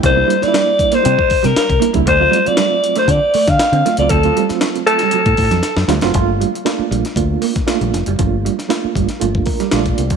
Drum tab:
HH |x-xxx-xxx-oxxxxx|x-xxx-xxx-oxxxxx|xxxxxxxxxxoxx-xx|x-xxx-xxx-oxxxxx|
SD |---oo--o---oo---|----o--o---oo-o-|---oo--o---ooooo|----o--o---oo-o-|
BD |o-----o--oo--o-o|o-------o--o----|o--------oo-----|o-------o--o----|

HH |x-xxx-xxx-oxxxxx|
SD |---oo--o---oo---|
BD |o-----o--oo--o-o|